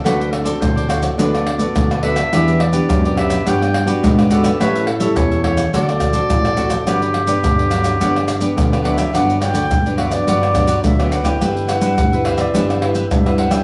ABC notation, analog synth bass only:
X:1
M:4/4
L:1/16
Q:1/4=106
K:G
V:1 name="Analog synth bass" clef=bass
D,,4 D,,4 D,,4 D,,4 | E,,4 F,,4 G,,4 _A,,4 | A,,4 E,,4 D,,4 A,,,4 | G,,,4 G,,,4 G,,,4 D,,4 |
G,,,3 D,, G,,,4 G,,,4 D,,3 D,, | G,,,3 G,, G,,,4 G,,,4 G,,3 G,, |]